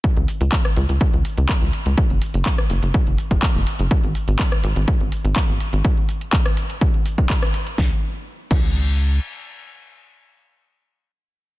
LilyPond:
<<
  \new Staff \with { instrumentName = "Analog synth bass" } { \clef bass \time 4/4 \key aes \mixolydian \tempo 4 = 124 r16 des,16 r16 des,16 r8 des,16 des,16 r16 des,16 r16 des,16 r16 des,16 r16 des,16 | r16 ges,,16 r16 ges,,16 r8 ges,,16 ges,,16 r16 ges,,16 r16 ges,,16 r16 ges,,16 r16 ges,,16 | r16 aes,,16 r16 aes,,16 r8 aes,,16 aes,,16 r16 aes,,16 r16 aes,,16 r16 aes,,16 r16 aes,,16 | r1 |
des,16 r4 r16 des,4. r4 | r1 | }
  \new DrumStaff \with { instrumentName = "Drums" } \drummode { \time 4/4 <hh bd>16 hh16 hho16 hh16 <hc hh bd>16 <hh ss>16 hho16 hh16 <hh bd>16 hh16 hho16 hh16 <hc hh bd>16 hh16 hho16 hh16 | <hh bd>16 hh16 hho16 hh16 <hc hh bd>16 <hh ss>16 hho16 hh16 <hh bd>16 hh16 hho16 <hh bd>16 <hc hh bd>16 hh16 hho16 hh16 | <hh bd>16 hh16 hho16 hh16 <hc hh bd>16 <hh ss>16 hho16 hh16 <hh bd>16 hh16 hho16 hh16 <hc hh bd>16 hh16 hho16 hh16 | <hh bd>16 hh16 hho16 hh16 <hc hh bd>16 <hh ss>16 hho16 hh16 <hh bd>16 hh16 hho16 <hh bd>16 <hc hh bd>16 <hh ss>16 hho16 hh16 |
<bd sn>4 r8 <cymc bd>8 r4 r4 | r4 r4 r4 r4 | }
>>